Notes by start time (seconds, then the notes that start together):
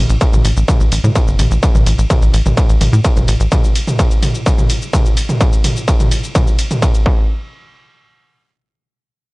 0.10 A1, shaker
0.21 kick, ride, shaker
0.33 A1, mid tom, shaker
0.45 A1, open hi-hat, ride, shaker
0.57 A1, shaker
0.68 kick, mid tom, ride, shaker
0.80 A1, shaker
0.92 A1, open hi-hat, ride, shaker
1.04 A2, mid tom, shaker
1.15 kick, ride, shaker
1.28 G1, shaker
1.39 A1, mid tom, open hi-hat, ride, shaker
1.51 A1, shaker
1.63 kick, ride, shaker
1.75 A1, mid tom, shaker
1.86 A1, open hi-hat, ride, shaker
1.98 A1, shaker
2.10 kick, mid tom, ride, shaker
2.22 A1, shaker
2.33 A1, open hi-hat, ride, shaker
2.46 A1, mid tom, shaker
2.57 kick, ride, shaker
2.69 A1, shaker
2.81 A1, mid tom, open hi-hat, ride, shaker
2.93 A2, shaker
3.04 kick, ride, shaker
3.16 G1, mid tom, shaker
3.28 A1, open hi-hat, ride, shaker
3.40 A1, shaker
3.52 kick, mid tom, ride, shaker
3.64 shaker
3.75 open hi-hat, ride, shaker
3.87 mid tom, shaker
3.99 kick, ride, shaker
4.11 shaker
4.22 mid tom, open hi-hat, ride, shaker
4.35 shaker
4.46 kick, ride, shaker
4.58 mid tom, shaker
4.70 open hi-hat, ride, shaker
4.82 shaker
4.93 kick, mid tom, ride, shaker
5.06 shaker
5.17 open hi-hat, ride, shaker
5.29 mid tom, shaker
5.41 kick, ride, shaker
5.53 shaker
5.64 mid tom, open hi-hat, ride, shaker
5.76 shaker
5.88 kick, ride, shaker
6.00 mid tom, shaker
6.11 open hi-hat, ride, shaker
6.24 shaker
6.35 kick, mid tom, ride, shaker
6.47 shaker
6.59 open hi-hat, ride, shaker
6.71 mid tom, shaker
6.82 kick, ride, shaker
6.95 shaker
7.06 kick